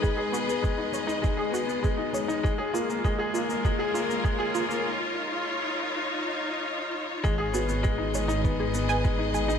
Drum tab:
SH |x-xxx-xxx-xxx-xx|x-xxx-xxx-xxx-xx|----------------|x-xxx-xxx-xxx-xx|
BD |o---o---o---o---|o---o---o---o---|----------------|o---o---o---o---|